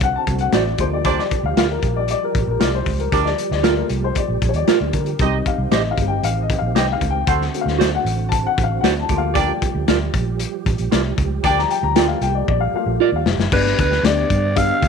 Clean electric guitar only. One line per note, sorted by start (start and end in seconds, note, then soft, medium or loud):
0.53 0.63 F#4 medium
0.53 0.63 C5 medium
0.53 0.63 D5 medium
1.57 1.67 F4 medium
1.57 1.67 A#4 medium
1.57 1.67 D5 medium
2.60 2.70 F4 medium
2.60 2.70 A#4 medium
2.60 2.71 D5 medium
3.63 3.73 F4 medium
3.63 3.74 A#4 loud
3.63 3.74 D5 loud
4.68 4.78 F4 medium
4.68 4.78 A#4 medium
4.68 4.78 D5 medium
5.71 5.81 G4 medium
5.71 5.82 C5 loud
5.71 5.82 D#5 medium
6.75 6.85 G4 medium
6.75 6.86 C5 medium
6.75 6.86 D#5 loud
7.78 7.89 F#4 medium
7.78 7.89 C5 medium
7.78 7.89 D5 loud
8.84 8.93 F#4 medium
8.84 8.93 C5 medium
8.84 8.94 D5 loud
9.88 9.97 F4 medium
9.88 9.98 A#4 medium
9.88 9.98 D5 loud
10.91 11.01 F4 medium
10.91 11.02 A#4 medium
10.91 11.02 D5 medium
11.96 12.05 F4 loud
11.96 12.06 A#4 medium
11.96 12.06 D5 loud
13.00 13.09 F4 medium
13.00 13.10 A#4 medium
13.00 13.10 D5 loud